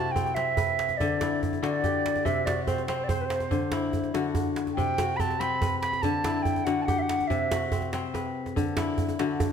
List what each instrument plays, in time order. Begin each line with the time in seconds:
Already playing: kora C3 E4 F#4 A4, flute A5
0.05 djembe slap
0.11 flute G5
0.16 kora C4, djembe bass
0.26 djembe tone
0.35 kora C4, flute E5, djembe slap
0.57 kora B4, djembe tone, djembe bass
0.69 djembe slap
0.79 djembe slap
0.89 djembe tone
0.97 kora D3, flute D5, djembe bass
1.21 kora E4, djembe slap, djembe tone
1.43 djembe slap, djembe bass
1.53 djembe tone
1.63 kora D3 F#4, flute D5, djembe slap
1.84 kora G4, djembe slap, djembe bass
2.06 djembe slap
2.16 djembe tone
2.25 kora C3, flute E5, djembe slap, djembe bass
2.37 djembe slap
2.46 kora F#4, flute D5, djembe slap, djembe tone
2.57 djembe slap
2.65 kora C4, flute C5, djembe bass
2.78 djembe tone
2.87 kora C4, flute C5, djembe slap
3.04 flute D5
3.08 flute C5, kora C5, djembe tone, djembe bass
3.20 flute B4, djembe slap
3.25 flute C5
3.30 djembe slap
3.40 djembe tone
3.51 kora D3, djembe slap, djembe bass
3.72 kora E4, djembe slap, djembe tone
3.93 djembe slap, djembe bass
4.04 djembe slap, djembe tone
4.14 kora D3 F#4, djembe slap
4.25 djembe slap
4.35 djembe tone, djembe bass
4.46 djembe slap
4.56 djembe slap
4.67 djembe tone
4.74 kora C3, flute G5
4.78 djembe slap, djembe bass
4.98 kora F#4, djembe slap, djembe tone
5.09 djembe slap
5.16 kora C4, flute A5 B5, djembe bass
5.30 djembe tone
5.40 kora C4, flute B5, djembe slap
5.62 kora B4, djembe tone, djembe bass
5.72 djembe slap
5.80 flute B5, djembe slap
5.93 djembe tone
6.02 kora D3, flute A5, djembe bass
6.14 djembe slap
6.24 kora E4, djembe slap, djembe tone
6.42 flute G5, djembe slap, djembe bass
6.56 djembe tone
6.65 kora D3 F#4, flute F#5, djembe slap
6.82 flute F#5 A5
6.88 kora G4, djembe slap, djembe tone, djembe bass
6.99 flute E5 F#5
7.09 djembe slap
7.20 djembe tone
7.27 kora C3, flute E5, djembe slap, djembe bass
7.51 kora F#4, djembe slap, djembe tone
7.61 djembe slap
7.72 kora C4, djembe bass
7.82 djembe tone
7.93 kora C4, djembe slap
8.14 kora B4, djembe tone
8.25 djembe slap
8.46 djembe tone
8.56 kora D3, djembe bass
8.67 djembe slap
8.77 kora E4, djembe slap, djembe tone
8.98 djembe slap, djembe bass
9.09 djembe tone
9.19 kora D3 F#4, djembe slap
9.40 djembe slap, djembe tone, djembe bass